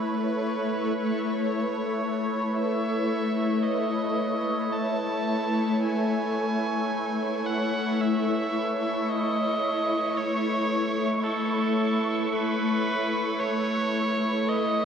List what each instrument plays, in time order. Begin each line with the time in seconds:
Already playing: ambient pad A3 E4 B4 C#5, electric violin B4
1.46 electric violin C#5
2.55 electric violin E5
3.63 electric violin D#5
4.73 electric violin A5
5.82 electric violin G#5, synth texture C#6
7.46 electric violin F#5
8.01 electric violin E5
9.09 electric violin D#5
10.18 electric violin C#5
11.24 electric violin A4
12.33 electric violin B4
13.40 electric violin C#5
14.49 electric violin D#5